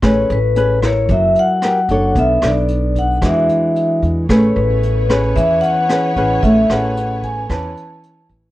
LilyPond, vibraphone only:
\new Staff \with { instrumentName = "Vibraphone" } { \time 4/4 \key a \major \tempo 4 = 113 cis''8 b'4 cis''8 e''8 fis''4. | e''8 d''4 fis''8 e''4. r8 | cis''8 b'4 cis''8 e''8 fis''4. | e''8 fis''4 gis''8 a''4. r8 | }